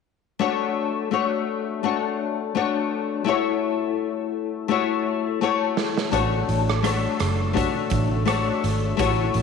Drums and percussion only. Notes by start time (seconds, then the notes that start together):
5.77 snare
5.98 snare
6.13 kick, closed hi-hat
6.49 closed hi-hat
6.70 cross-stick
6.84 cross-stick, closed hi-hat
7.20 cross-stick, closed hi-hat
7.57 kick, closed hi-hat
7.90 kick, closed hi-hat
8.28 cross-stick, closed hi-hat
8.64 closed hi-hat
8.99 kick, closed hi-hat
9.34 closed hi-hat